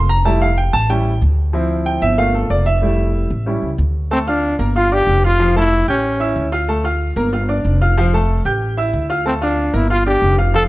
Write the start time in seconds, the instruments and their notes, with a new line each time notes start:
Already playing: upright bass F1
0.09 grand piano A#5
0.25 grand piano G3 A3 E4 A5
0.42 grand piano F5
0.58 grand piano G5
0.73 upright bass A1, grand piano A5
0.89 grand piano G3 C#4 E4 G5
1.22 upright bass D2
1.53 grand piano F3 C4 E4
1.86 grand piano G5
2.02 upright bass G1, grand piano E5
2.18 grand piano A3 A#3 F4 F5
2.34 grand piano A4
2.50 upright bass F1, grand piano D5
2.66 grand piano E5
2.82 grand piano G3 A3 E4
3.30 upright bass A1
3.46 grand piano G3 C#4 E4
3.62 upright bass C#2
3.78 upright bass D2
4.11 grand piano A3 A4 A5, trombone C4
4.27 trombone D4, grand piano F4 F5 F6
4.59 upright bass G1, grand piano A#3 A#4 A#5
4.76 grand piano F4 F5 F6, trombone F4
4.91 grand piano D4 D5 D6, trombone G4
5.07 upright bass F1
5.24 grand piano F4 F5 F6, trombone F4
5.40 grand piano F3 F4 F5
5.56 grand piano A3 A4 A5, trombone E4
5.88 upright bass A1, trombone C#4, grand piano G4 G5 G6
6.20 grand piano E4 E5 E6
6.36 upright bass D2
6.52 grand piano F4 F5 F6
6.68 grand piano A3 A4 A5
6.84 grand piano F4 F5 F6
7.16 upright bass G1, grand piano A#3 A#4 A#5
7.33 grand piano F4 F5 F6
7.49 grand piano D4 D5 D6
7.65 upright bass F1
7.81 grand piano F4 F5 F6
7.98 grand piano F3 F4 F5
8.13 grand piano A3 A4 A5
8.45 upright bass A1, grand piano G4 G5 G6
8.77 grand piano E4 E5 E6
8.93 upright bass D2
9.10 grand piano F4 F5 F6
9.25 grand piano A3 A4 A5, trombone C4
9.42 trombone D4, grand piano F4 F5 F6
9.73 upright bass G1, grand piano A#3 A#4 A#5, trombone E4
9.90 grand piano F4 F5 F6, trombone F4
10.06 grand piano D4 D5 D6, trombone G4
10.22 upright bass F1
10.38 grand piano F4 F5 F6
10.54 grand piano F3 F4 F5, trombone A4